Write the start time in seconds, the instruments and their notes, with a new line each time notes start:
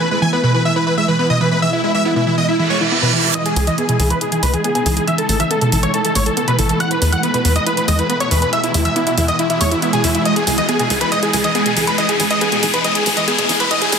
0.00 supersaw synth B4
0.11 synth pluck G#3, supersaw synth B4
0.22 synth pluck E3, supersaw synth G#5
0.33 synth pluck B3, supersaw synth B4
0.44 synth pluck B2, supersaw synth B4
0.54 synth pluck E3, supersaw synth B4
0.65 synth pluck E3, supersaw synth E5
0.76 synth pluck E4, supersaw synth B4
0.87 synth pluck E3, supersaw synth B4
0.98 synth pluck G#3, supersaw synth E5
1.08 synth pluck E3, supersaw synth B4
1.19 synth pluck B3, supersaw synth B4
1.30 synth pluck B2, supersaw synth D#5
1.41 synth pluck E3, supersaw synth B4
1.51 synth pluck E3, supersaw synth B4
1.62 synth pluck E3, supersaw synth E5
1.73 supersaw synth E4
1.84 synth pluck G#3, supersaw synth E4
1.94 synth pluck E3, supersaw synth E5
2.05 synth pluck B3, supersaw synth E4
2.16 synth pluck B2, supersaw synth E4
2.27 synth pluck E3, supersaw synth E4
2.38 synth pluck E3, supersaw synth D#5
2.48 supersaw synth E4, synth pluck E4, reverse cymbal
2.59 synth pluck E3, supersaw synth E4
2.70 synth pluck G#3, supersaw synth C#5
2.81 synth pluck E3, supersaw synth E4
2.92 synth pluck B3, supersaw synth E4
3.02 synth pluck B2, supersaw synth B4
3.13 synth pluck E3, supersaw synth E4
3.24 synth pluck E3, supersaw synth E4
3.35 synth pluck E3, supersaw synth D#5, grand piano D#6, closed hi-hat, riser
3.46 supersaw synth G#4, grand piano G#5, closed hi-hat
3.56 analog synth bass C#2, synth pluck G#3, supersaw synth G#4, grand piano G#5, open hi-hat
3.67 synth pluck E3, supersaw synth D#5, grand piano D#6, closed hi-hat
3.78 synth pluck B3, supersaw synth G#4, grand piano G#5, closed hi-hat
3.89 synth pluck B2, supersaw synth G#4, grand piano G#5, closed hi-hat
4.00 analog synth bass C#2, synth pluck E3, supersaw synth G#4, grand piano G#5, open hi-hat
4.10 synth pluck E3, supersaw synth B4, grand piano B5, closed hi-hat
4.21 synth pluck E4, supersaw synth G#4, grand piano G#5, closed hi-hat
4.32 synth pluck E3, supersaw synth G#4, grand piano G#5, closed hi-hat
4.43 analog synth bass C#2, synth pluck G#3, supersaw synth B4, grand piano B5, open hi-hat
4.53 synth pluck E3, supersaw synth G#4, grand piano G#5, closed hi-hat
4.64 synth pluck B3, supersaw synth G#4, grand piano G#5, closed hi-hat
4.75 synth pluck B2, supersaw synth G#4, grand piano G#5, closed hi-hat
4.86 analog synth bass C#2, synth pluck E3, supersaw synth G#4, grand piano G#5, open hi-hat
4.97 synth pluck E3, supersaw synth G#4, grand piano G#5, closed hi-hat
5.07 synth pluck E3, supersaw synth E5, grand piano E6, closed hi-hat
5.18 supersaw synth A4, grand piano A5, closed hi-hat
5.29 analog synth bass A1, synth pluck A3, supersaw synth A4, grand piano A5, open hi-hat
5.40 synth pluck E3, supersaw synth E5, grand piano E6, closed hi-hat
5.51 synth pluck B3, supersaw synth A4, grand piano A5, closed hi-hat
5.61 synth pluck B2, supersaw synth A4, grand piano A5, closed hi-hat
5.72 analog synth bass A1, synth pluck E3, supersaw synth A4, grand piano A5, open hi-hat
5.83 synth pluck E3, supersaw synth C#5, grand piano C#6, closed hi-hat
5.94 synth pluck E4, supersaw synth A4, grand piano A5, closed hi-hat
6.05 synth pluck E3, supersaw synth A4, grand piano A5, closed hi-hat
6.15 analog synth bass A1, synth pluck A3, supersaw synth C#5, grand piano C#6, open hi-hat
6.26 synth pluck E3, supersaw synth A4, grand piano A5, closed hi-hat
6.37 synth pluck B3, supersaw synth A4, grand piano A5, closed hi-hat
6.48 synth pluck B2, supersaw synth B4, grand piano B5, closed hi-hat
6.59 analog synth bass A1, synth pluck E3, supersaw synth A4, grand piano A5, open hi-hat
6.69 synth pluck E3, supersaw synth A4, grand piano A5, closed hi-hat
6.80 synth pluck E3, supersaw synth F#5, grand piano F#6, closed hi-hat
6.91 supersaw synth B4, grand piano B5, closed hi-hat
7.02 analog synth bass E2, synth pluck G#3, supersaw synth B4, grand piano B5, open hi-hat
7.12 synth pluck E3, supersaw synth F#5, grand piano F#6, closed hi-hat
7.23 synth pluck B3, supersaw synth B4, grand piano B5, closed hi-hat
7.34 synth pluck B2, supersaw synth B4, grand piano B5, closed hi-hat
7.45 analog synth bass E2, synth pluck E3, supersaw synth B4, grand piano B5, open hi-hat
7.56 synth pluck E3, supersaw synth D#5, grand piano D#6, closed hi-hat
7.66 synth pluck E4, supersaw synth B4, grand piano B5, closed hi-hat
7.77 synth pluck E3, supersaw synth B4, grand piano B5, closed hi-hat
7.88 analog synth bass E2, synth pluck G#3, supersaw synth D#5, grand piano D#6, open hi-hat
7.99 synth pluck E3, supersaw synth B4, grand piano B5, closed hi-hat
8.10 synth pluck B3, supersaw synth B4, grand piano B5, closed hi-hat
8.20 synth pluck B2, supersaw synth C#5, grand piano C#6, closed hi-hat
8.31 analog synth bass E2, synth pluck E3, supersaw synth B4, grand piano B5, open hi-hat
8.42 synth pluck E3, supersaw synth B4, grand piano B5, closed hi-hat
8.53 synth pluck E3, supersaw synth E5, grand piano E6, closed hi-hat
8.64 supersaw synth E4, grand piano E5, closed hi-hat
8.74 analog synth bass E2, synth pluck G#3, supersaw synth E4, grand piano E5, open hi-hat
8.85 synth pluck E3, supersaw synth E5, grand piano E6, closed hi-hat
8.96 synth pluck B3, supersaw synth E4, grand piano E5, closed hi-hat
9.07 synth pluck B2, supersaw synth E4, grand piano E5, closed hi-hat
9.18 analog synth bass E2, synth pluck E3, supersaw synth E4, grand piano E5, open hi-hat
9.28 synth pluck E3, supersaw synth D#5, grand piano D#6, closed hi-hat
9.39 synth pluck E4, supersaw synth E4, grand piano E5, closed hi-hat
9.50 synth pluck E3, supersaw synth E4, grand piano E5, closed hi-hat
9.61 analog synth bass E2, synth pluck G#3, supersaw synth C#5, grand piano C#6, open hi-hat
9.71 synth pluck E3, supersaw synth E4, grand piano E5, closed hi-hat
9.82 synth pluck B3, supersaw synth E4, grand piano E5, closed hi-hat
9.93 synth pluck B2, supersaw synth G#4, grand piano G#5, closed hi-hat
10.04 analog synth bass E2, synth pluck E3, supersaw synth E4, grand piano E5, open hi-hat
10.15 synth pluck E3, supersaw synth E4, grand piano E5, closed hi-hat
10.25 synth pluck E3, supersaw synth D#5, grand piano D#6, closed hi-hat
10.36 supersaw synth G#4, grand piano G#5, closed hi-hat
10.47 analog synth bass C#2, synth pluck G#3, supersaw synth G#4, grand piano G#5, open hi-hat
10.58 synth pluck E3, supersaw synth D#5, grand piano D#6, closed hi-hat
10.69 synth pluck B3, supersaw synth G#4, grand piano G#5, closed hi-hat
10.79 synth pluck B2, supersaw synth G#4, grand piano G#5, closed hi-hat
10.90 analog synth bass C#2, synth pluck E3, supersaw synth G#4, grand piano G#5, open hi-hat
11.01 synth pluck E3, supersaw synth B4, grand piano B5, closed hi-hat
11.12 synth pluck E3, supersaw synth D#5, grand piano D#6, closed hi-hat
11.23 supersaw synth G#4, grand piano G#5, closed hi-hat
11.33 analog synth bass C#2, synth pluck G#3, supersaw synth G#4, grand piano G#5, open hi-hat
11.44 synth pluck E3, supersaw synth D#5, grand piano D#6, closed hi-hat
11.55 synth pluck B3, supersaw synth G#4, grand piano G#5, closed hi-hat
11.66 synth pluck B2, supersaw synth G#4, grand piano G#5, closed hi-hat
11.77 analog synth bass C#2, synth pluck E3, supersaw synth G#4, grand piano G#5, open hi-hat
11.87 synth pluck E3, supersaw synth B4, grand piano B5, closed hi-hat
11.98 synth pluck E3, supersaw synth D#5, grand piano D#6, closed hi-hat
12.09 supersaw synth G#4, grand piano G#5, closed hi-hat
12.20 analog synth bass A1, synth pluck G#3, supersaw synth G#4, grand piano G#5, open hi-hat
12.31 synth pluck E3, supersaw synth D#5, grand piano D#6, closed hi-hat
12.41 synth pluck B3, supersaw synth G#4, grand piano G#5, closed hi-hat
12.52 synth pluck B2, supersaw synth G#4, grand piano G#5, closed hi-hat
12.63 analog synth bass A1, synth pluck E3, supersaw synth G#4, grand piano G#5, open hi-hat
12.74 synth pluck E3, supersaw synth B4, grand piano B5, closed hi-hat
12.84 synth pluck E3, supersaw synth D#5, grand piano D#6, closed hi-hat
12.95 supersaw synth G#4, grand piano G#5, closed hi-hat
13.06 analog synth bass A1, synth pluck G#3, supersaw synth G#4, grand piano G#5, open hi-hat
13.17 synth pluck E3, supersaw synth D#5, grand piano D#6, closed hi-hat
13.28 synth pluck B3, supersaw synth G#4, grand piano G#5, closed hi-hat
13.38 synth pluck B2, supersaw synth G#4, grand piano G#5, closed hi-hat
13.49 analog synth bass A1, synth pluck E3, supersaw synth G#4, grand piano G#5, open hi-hat
13.60 synth pluck E3, supersaw synth B4, grand piano B5, closed hi-hat
13.71 synth pluck E3, supersaw synth D#5, grand piano D#6, closed hi-hat
13.82 supersaw synth G#4, grand piano G#5, closed hi-hat
13.92 analog synth bass E2, synth pluck G#3, supersaw synth G#4, grand piano G#5, open hi-hat